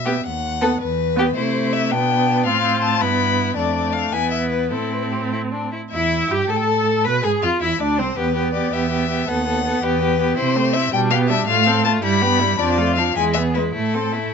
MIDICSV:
0, 0, Header, 1, 5, 480
1, 0, Start_track
1, 0, Key_signature, 0, "minor"
1, 0, Tempo, 368324
1, 318, Time_signature, 6, 3, 24, 8
1, 4642, Tempo, 390625
1, 8482, Tempo, 368777
1, 15682, Tempo, 387597
1, 18307, End_track
2, 0, Start_track
2, 0, Title_t, "Violin"
2, 0, Program_c, 0, 40
2, 0, Note_on_c, 0, 76, 56
2, 320, Note_off_c, 0, 76, 0
2, 337, Note_on_c, 0, 78, 68
2, 1041, Note_off_c, 0, 78, 0
2, 1054, Note_on_c, 0, 71, 69
2, 1753, Note_off_c, 0, 71, 0
2, 1771, Note_on_c, 0, 72, 69
2, 2250, Note_on_c, 0, 76, 74
2, 2269, Note_off_c, 0, 72, 0
2, 2487, Note_on_c, 0, 79, 84
2, 2507, Note_off_c, 0, 76, 0
2, 3197, Note_off_c, 0, 79, 0
2, 3205, Note_on_c, 0, 77, 78
2, 3668, Note_off_c, 0, 77, 0
2, 3676, Note_on_c, 0, 81, 72
2, 3920, Note_on_c, 0, 83, 84
2, 3939, Note_off_c, 0, 81, 0
2, 4632, Note_off_c, 0, 83, 0
2, 4640, Note_on_c, 0, 74, 70
2, 5091, Note_on_c, 0, 77, 63
2, 5110, Note_off_c, 0, 74, 0
2, 5328, Note_on_c, 0, 80, 73
2, 5347, Note_off_c, 0, 77, 0
2, 5555, Note_off_c, 0, 80, 0
2, 5563, Note_on_c, 0, 76, 54
2, 5787, Note_off_c, 0, 76, 0
2, 5794, Note_on_c, 0, 71, 50
2, 6044, Note_off_c, 0, 71, 0
2, 6051, Note_on_c, 0, 69, 49
2, 6320, Note_on_c, 0, 71, 40
2, 6338, Note_off_c, 0, 69, 0
2, 6436, Note_on_c, 0, 69, 35
2, 6455, Note_off_c, 0, 71, 0
2, 6549, Note_on_c, 0, 67, 36
2, 6568, Note_off_c, 0, 69, 0
2, 6673, Note_on_c, 0, 69, 36
2, 6692, Note_off_c, 0, 67, 0
2, 6803, Note_off_c, 0, 69, 0
2, 7521, Note_on_c, 0, 76, 60
2, 8006, Note_on_c, 0, 79, 60
2, 8024, Note_off_c, 0, 76, 0
2, 8247, Note_on_c, 0, 81, 55
2, 8266, Note_off_c, 0, 79, 0
2, 8325, Note_on_c, 0, 79, 47
2, 8343, Note_off_c, 0, 81, 0
2, 8404, Note_on_c, 0, 81, 57
2, 8423, Note_off_c, 0, 79, 0
2, 8952, Note_on_c, 0, 83, 67
2, 8972, Note_off_c, 0, 81, 0
2, 9191, Note_off_c, 0, 83, 0
2, 9199, Note_on_c, 0, 80, 62
2, 9298, Note_off_c, 0, 80, 0
2, 9438, Note_on_c, 0, 77, 59
2, 9538, Note_off_c, 0, 77, 0
2, 9676, Note_on_c, 0, 76, 66
2, 9934, Note_on_c, 0, 74, 57
2, 9953, Note_off_c, 0, 76, 0
2, 10176, Note_on_c, 0, 72, 56
2, 10195, Note_off_c, 0, 74, 0
2, 10401, Note_on_c, 0, 71, 62
2, 10420, Note_off_c, 0, 72, 0
2, 10875, Note_off_c, 0, 71, 0
2, 10882, Note_on_c, 0, 74, 57
2, 11137, Note_on_c, 0, 76, 61
2, 11156, Note_off_c, 0, 74, 0
2, 11862, Note_on_c, 0, 78, 69
2, 11882, Note_off_c, 0, 76, 0
2, 12577, Note_on_c, 0, 71, 78
2, 12596, Note_off_c, 0, 78, 0
2, 13270, Note_off_c, 0, 71, 0
2, 13278, Note_on_c, 0, 72, 75
2, 13742, Note_on_c, 0, 76, 80
2, 13762, Note_off_c, 0, 72, 0
2, 13985, Note_off_c, 0, 76, 0
2, 14005, Note_on_c, 0, 79, 89
2, 14098, Note_off_c, 0, 79, 0
2, 14231, Note_on_c, 0, 77, 76
2, 14328, Note_off_c, 0, 77, 0
2, 14462, Note_on_c, 0, 76, 85
2, 14698, Note_off_c, 0, 76, 0
2, 14706, Note_on_c, 0, 77, 85
2, 15183, Note_off_c, 0, 77, 0
2, 15193, Note_on_c, 0, 81, 80
2, 15290, Note_off_c, 0, 81, 0
2, 15434, Note_on_c, 0, 83, 98
2, 16137, Note_on_c, 0, 74, 83
2, 16155, Note_off_c, 0, 83, 0
2, 16590, Note_off_c, 0, 74, 0
2, 16597, Note_on_c, 0, 77, 73
2, 16839, Note_off_c, 0, 77, 0
2, 16851, Note_on_c, 0, 80, 85
2, 16947, Note_off_c, 0, 80, 0
2, 17064, Note_on_c, 0, 76, 69
2, 17163, Note_off_c, 0, 76, 0
2, 17324, Note_on_c, 0, 71, 62
2, 17423, Note_off_c, 0, 71, 0
2, 17570, Note_on_c, 0, 69, 60
2, 18301, Note_off_c, 0, 69, 0
2, 18307, End_track
3, 0, Start_track
3, 0, Title_t, "Violin"
3, 0, Program_c, 1, 40
3, 69, Note_on_c, 1, 67, 43
3, 185, Note_off_c, 1, 67, 0
3, 800, Note_on_c, 1, 69, 53
3, 914, Note_off_c, 1, 69, 0
3, 1545, Note_on_c, 1, 67, 55
3, 1647, Note_off_c, 1, 67, 0
3, 1772, Note_on_c, 1, 64, 49
3, 2494, Note_on_c, 1, 62, 53
3, 2513, Note_off_c, 1, 64, 0
3, 3201, Note_on_c, 1, 65, 53
3, 3221, Note_off_c, 1, 62, 0
3, 3927, Note_on_c, 1, 64, 53
3, 3946, Note_off_c, 1, 65, 0
3, 4634, Note_off_c, 1, 64, 0
3, 4642, Note_on_c, 1, 62, 52
3, 5343, Note_on_c, 1, 64, 44
3, 5361, Note_off_c, 1, 62, 0
3, 6051, Note_off_c, 1, 64, 0
3, 6058, Note_on_c, 1, 64, 40
3, 6747, Note_off_c, 1, 64, 0
3, 6814, Note_on_c, 1, 64, 44
3, 6913, Note_off_c, 1, 64, 0
3, 7051, Note_on_c, 1, 62, 39
3, 7292, Note_off_c, 1, 62, 0
3, 7299, Note_on_c, 1, 64, 35
3, 7397, Note_off_c, 1, 64, 0
3, 7558, Note_on_c, 1, 64, 56
3, 7989, Note_off_c, 1, 64, 0
3, 8010, Note_on_c, 1, 67, 56
3, 8241, Note_off_c, 1, 67, 0
3, 8248, Note_on_c, 1, 69, 52
3, 8951, Note_on_c, 1, 71, 60
3, 8971, Note_off_c, 1, 69, 0
3, 9203, Note_on_c, 1, 68, 54
3, 9222, Note_off_c, 1, 71, 0
3, 9448, Note_off_c, 1, 68, 0
3, 9458, Note_on_c, 1, 65, 55
3, 9692, Note_off_c, 1, 65, 0
3, 9698, Note_on_c, 1, 64, 59
3, 9934, Note_off_c, 1, 64, 0
3, 9940, Note_on_c, 1, 62, 56
3, 10173, Note_on_c, 1, 60, 55
3, 10192, Note_off_c, 1, 62, 0
3, 10403, Note_off_c, 1, 60, 0
3, 10411, Note_on_c, 1, 67, 48
3, 10628, Note_off_c, 1, 67, 0
3, 10636, Note_on_c, 1, 67, 39
3, 10876, Note_off_c, 1, 67, 0
3, 10887, Note_on_c, 1, 67, 42
3, 11121, Note_off_c, 1, 67, 0
3, 11144, Note_on_c, 1, 67, 44
3, 11360, Note_off_c, 1, 67, 0
3, 11368, Note_on_c, 1, 67, 41
3, 11602, Note_off_c, 1, 67, 0
3, 11611, Note_on_c, 1, 67, 43
3, 11844, Note_off_c, 1, 67, 0
3, 11854, Note_on_c, 1, 69, 47
3, 12085, Note_off_c, 1, 69, 0
3, 12101, Note_on_c, 1, 69, 42
3, 12323, Note_off_c, 1, 69, 0
3, 12331, Note_on_c, 1, 69, 47
3, 12562, Note_off_c, 1, 69, 0
3, 12574, Note_on_c, 1, 67, 53
3, 12799, Note_off_c, 1, 67, 0
3, 12807, Note_on_c, 1, 67, 49
3, 13038, Note_off_c, 1, 67, 0
3, 13061, Note_on_c, 1, 67, 51
3, 13275, Note_off_c, 1, 67, 0
3, 13283, Note_on_c, 1, 64, 52
3, 13524, Note_on_c, 1, 60, 49
3, 13543, Note_off_c, 1, 64, 0
3, 13776, Note_on_c, 1, 64, 52
3, 13796, Note_off_c, 1, 60, 0
3, 14002, Note_off_c, 1, 64, 0
3, 14024, Note_on_c, 1, 62, 54
3, 14254, Note_on_c, 1, 67, 52
3, 14273, Note_off_c, 1, 62, 0
3, 14485, Note_on_c, 1, 62, 50
3, 14505, Note_off_c, 1, 67, 0
3, 14721, Note_off_c, 1, 62, 0
3, 14741, Note_on_c, 1, 65, 53
3, 14964, Note_on_c, 1, 69, 52
3, 14984, Note_off_c, 1, 65, 0
3, 15194, Note_on_c, 1, 65, 57
3, 15213, Note_off_c, 1, 69, 0
3, 15437, Note_off_c, 1, 65, 0
3, 15444, Note_on_c, 1, 64, 57
3, 15682, Note_on_c, 1, 67, 51
3, 15700, Note_off_c, 1, 64, 0
3, 15895, Note_on_c, 1, 64, 50
3, 15914, Note_off_c, 1, 67, 0
3, 16128, Note_off_c, 1, 64, 0
3, 16135, Note_on_c, 1, 62, 53
3, 16373, Note_on_c, 1, 65, 51
3, 16392, Note_off_c, 1, 62, 0
3, 16625, Note_on_c, 1, 62, 49
3, 16644, Note_off_c, 1, 65, 0
3, 16829, Note_off_c, 1, 62, 0
3, 16836, Note_on_c, 1, 64, 51
3, 17084, Note_on_c, 1, 68, 45
3, 17103, Note_off_c, 1, 64, 0
3, 17319, Note_on_c, 1, 64, 42
3, 17337, Note_off_c, 1, 68, 0
3, 17547, Note_off_c, 1, 64, 0
3, 17554, Note_on_c, 1, 64, 43
3, 17816, Note_on_c, 1, 69, 40
3, 17835, Note_off_c, 1, 64, 0
3, 18047, Note_on_c, 1, 64, 43
3, 18065, Note_off_c, 1, 69, 0
3, 18307, Note_off_c, 1, 64, 0
3, 18307, End_track
4, 0, Start_track
4, 0, Title_t, "Viola"
4, 0, Program_c, 2, 41
4, 82, Note_on_c, 2, 59, 45
4, 192, Note_off_c, 2, 59, 0
4, 804, Note_on_c, 2, 59, 53
4, 917, Note_off_c, 2, 59, 0
4, 1518, Note_on_c, 2, 59, 52
4, 1632, Note_off_c, 2, 59, 0
4, 1760, Note_on_c, 2, 57, 50
4, 2491, Note_on_c, 2, 59, 54
4, 2510, Note_off_c, 2, 57, 0
4, 3208, Note_on_c, 2, 60, 53
4, 3228, Note_off_c, 2, 59, 0
4, 3924, Note_on_c, 2, 59, 51
4, 3944, Note_off_c, 2, 60, 0
4, 4646, Note_off_c, 2, 59, 0
4, 4653, Note_on_c, 2, 57, 49
4, 5344, Note_on_c, 2, 59, 46
4, 5362, Note_off_c, 2, 57, 0
4, 6068, Note_on_c, 2, 60, 41
4, 6087, Note_off_c, 2, 59, 0
4, 7309, Note_off_c, 2, 60, 0
4, 7547, Note_on_c, 2, 64, 55
4, 8025, Note_on_c, 2, 67, 55
4, 8043, Note_off_c, 2, 64, 0
4, 8254, Note_on_c, 2, 69, 52
4, 8272, Note_off_c, 2, 67, 0
4, 8965, Note_off_c, 2, 69, 0
4, 8973, Note_on_c, 2, 71, 64
4, 9203, Note_off_c, 2, 71, 0
4, 9211, Note_on_c, 2, 68, 53
4, 9458, Note_on_c, 2, 65, 54
4, 9477, Note_off_c, 2, 68, 0
4, 9684, Note_off_c, 2, 65, 0
4, 9692, Note_on_c, 2, 64, 57
4, 9789, Note_off_c, 2, 64, 0
4, 9945, Note_on_c, 2, 62, 53
4, 10181, Note_on_c, 2, 60, 52
4, 10201, Note_off_c, 2, 62, 0
4, 10416, Note_off_c, 2, 60, 0
4, 10426, Note_on_c, 2, 59, 47
4, 10652, Note_off_c, 2, 59, 0
4, 10658, Note_on_c, 2, 59, 43
4, 10887, Note_off_c, 2, 59, 0
4, 10899, Note_on_c, 2, 59, 43
4, 11122, Note_off_c, 2, 59, 0
4, 11129, Note_on_c, 2, 59, 47
4, 11359, Note_off_c, 2, 59, 0
4, 11367, Note_on_c, 2, 59, 42
4, 11602, Note_off_c, 2, 59, 0
4, 11614, Note_on_c, 2, 59, 40
4, 11845, Note_off_c, 2, 59, 0
4, 11855, Note_on_c, 2, 59, 50
4, 12082, Note_off_c, 2, 59, 0
4, 12090, Note_on_c, 2, 59, 44
4, 12322, Note_off_c, 2, 59, 0
4, 12335, Note_on_c, 2, 59, 47
4, 12564, Note_off_c, 2, 59, 0
4, 12574, Note_on_c, 2, 59, 48
4, 12803, Note_off_c, 2, 59, 0
4, 12814, Note_on_c, 2, 59, 47
4, 13041, Note_off_c, 2, 59, 0
4, 13048, Note_on_c, 2, 59, 50
4, 13271, Note_off_c, 2, 59, 0
4, 13279, Note_on_c, 2, 60, 49
4, 13523, Note_on_c, 2, 57, 51
4, 13543, Note_off_c, 2, 60, 0
4, 13762, Note_on_c, 2, 60, 49
4, 13782, Note_off_c, 2, 57, 0
4, 13995, Note_off_c, 2, 60, 0
4, 14003, Note_on_c, 2, 55, 54
4, 14242, Note_on_c, 2, 59, 52
4, 14261, Note_off_c, 2, 55, 0
4, 14484, Note_on_c, 2, 55, 53
4, 14504, Note_off_c, 2, 59, 0
4, 14713, Note_off_c, 2, 55, 0
4, 14720, Note_on_c, 2, 57, 57
4, 14959, Note_on_c, 2, 60, 51
4, 14979, Note_off_c, 2, 57, 0
4, 15206, Note_on_c, 2, 57, 53
4, 15225, Note_off_c, 2, 60, 0
4, 15430, Note_off_c, 2, 57, 0
4, 15438, Note_on_c, 2, 55, 54
4, 15684, Note_on_c, 2, 59, 52
4, 15703, Note_off_c, 2, 55, 0
4, 15908, Note_on_c, 2, 55, 51
4, 15927, Note_off_c, 2, 59, 0
4, 16138, Note_off_c, 2, 55, 0
4, 16145, Note_on_c, 2, 53, 58
4, 16380, Note_on_c, 2, 57, 50
4, 16398, Note_off_c, 2, 53, 0
4, 16610, Note_on_c, 2, 53, 47
4, 16629, Note_off_c, 2, 57, 0
4, 16846, Note_off_c, 2, 53, 0
4, 16854, Note_on_c, 2, 56, 50
4, 17094, Note_on_c, 2, 59, 46
4, 17113, Note_off_c, 2, 56, 0
4, 17346, Note_on_c, 2, 56, 43
4, 17365, Note_off_c, 2, 59, 0
4, 17573, Note_off_c, 2, 56, 0
4, 17581, Note_on_c, 2, 57, 44
4, 17832, Note_on_c, 2, 60, 40
4, 17850, Note_off_c, 2, 57, 0
4, 18075, Note_on_c, 2, 57, 37
4, 18094, Note_off_c, 2, 60, 0
4, 18307, Note_off_c, 2, 57, 0
4, 18307, End_track
5, 0, Start_track
5, 0, Title_t, "Cello"
5, 0, Program_c, 3, 42
5, 0, Note_on_c, 3, 47, 46
5, 201, Note_off_c, 3, 47, 0
5, 326, Note_on_c, 3, 39, 52
5, 928, Note_off_c, 3, 39, 0
5, 1055, Note_on_c, 3, 40, 56
5, 1649, Note_off_c, 3, 40, 0
5, 1773, Note_on_c, 3, 48, 54
5, 2495, Note_on_c, 3, 47, 56
5, 2515, Note_off_c, 3, 48, 0
5, 3209, Note_on_c, 3, 45, 58
5, 3228, Note_off_c, 3, 47, 0
5, 3928, Note_on_c, 3, 43, 59
5, 3948, Note_off_c, 3, 45, 0
5, 4639, Note_off_c, 3, 43, 0
5, 4647, Note_on_c, 3, 41, 54
5, 5294, Note_off_c, 3, 41, 0
5, 5340, Note_on_c, 3, 40, 47
5, 6063, Note_on_c, 3, 45, 44
5, 6082, Note_off_c, 3, 40, 0
5, 7307, Note_off_c, 3, 45, 0
5, 7550, Note_on_c, 3, 40, 55
5, 7985, Note_off_c, 3, 40, 0
5, 8007, Note_on_c, 3, 43, 52
5, 8240, Note_off_c, 3, 43, 0
5, 8249, Note_on_c, 3, 45, 52
5, 8972, Note_on_c, 3, 47, 64
5, 8991, Note_off_c, 3, 45, 0
5, 9199, Note_off_c, 3, 47, 0
5, 9207, Note_on_c, 3, 44, 53
5, 9304, Note_off_c, 3, 44, 0
5, 9452, Note_on_c, 3, 41, 53
5, 9549, Note_off_c, 3, 41, 0
5, 9691, Note_on_c, 3, 40, 55
5, 9921, Note_off_c, 3, 40, 0
5, 9929, Note_on_c, 3, 38, 51
5, 10175, Note_on_c, 3, 36, 56
5, 10194, Note_off_c, 3, 38, 0
5, 10408, Note_off_c, 3, 36, 0
5, 10416, Note_on_c, 3, 40, 50
5, 11043, Note_off_c, 3, 40, 0
5, 11122, Note_on_c, 3, 40, 52
5, 11759, Note_off_c, 3, 40, 0
5, 11854, Note_on_c, 3, 39, 60
5, 12482, Note_off_c, 3, 39, 0
5, 12561, Note_on_c, 3, 40, 58
5, 13192, Note_off_c, 3, 40, 0
5, 13284, Note_on_c, 3, 48, 69
5, 13910, Note_off_c, 3, 48, 0
5, 13992, Note_on_c, 3, 47, 67
5, 14630, Note_off_c, 3, 47, 0
5, 14708, Note_on_c, 3, 45, 70
5, 15349, Note_off_c, 3, 45, 0
5, 15425, Note_on_c, 3, 43, 64
5, 16054, Note_off_c, 3, 43, 0
5, 16136, Note_on_c, 3, 41, 74
5, 16766, Note_off_c, 3, 41, 0
5, 16844, Note_on_c, 3, 40, 59
5, 17488, Note_off_c, 3, 40, 0
5, 17580, Note_on_c, 3, 45, 54
5, 18234, Note_off_c, 3, 45, 0
5, 18307, End_track
0, 0, End_of_file